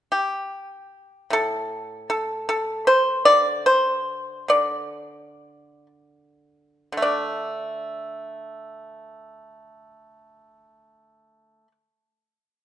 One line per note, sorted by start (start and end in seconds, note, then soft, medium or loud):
0.12 1.28 G4 medium
1.30 3.27 A2 soft
1.30 2.07 A4 medium
2.10 2.47 A4 medium
2.49 2.86 A4 medium
2.87 3.25 C5 medium
3.25 4.47 D3 soft
3.25 3.64 D5 medium
3.66 4.46 C5 medium
4.48 6.91 D3 soft
4.48 5.86 D5 medium
6.92 11.61 D3 soft
6.97 11.66 A3 soft
7.02 11.71 D4 soft
7.02 11.67 D5 medium